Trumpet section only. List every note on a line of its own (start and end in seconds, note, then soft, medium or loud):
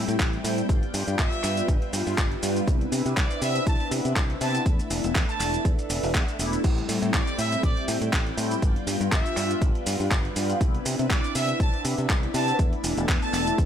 1.19 1.68 E5 loud
3.17 3.39 D5 medium
3.42 3.64 E5 loud
3.66 3.89 A5 medium
4.41 4.63 A5 medium
5.29 5.65 A5 loud
7.14 7.36 D5 medium
7.39 7.61 E5 loud
7.63 7.86 D5 medium
9.12 9.62 E5 medium
11.10 11.33 D5 medium
11.35 11.58 E5 loud
11.60 11.82 A5 medium
12.34 12.57 A5 loud
13.22 13.58 A5 loud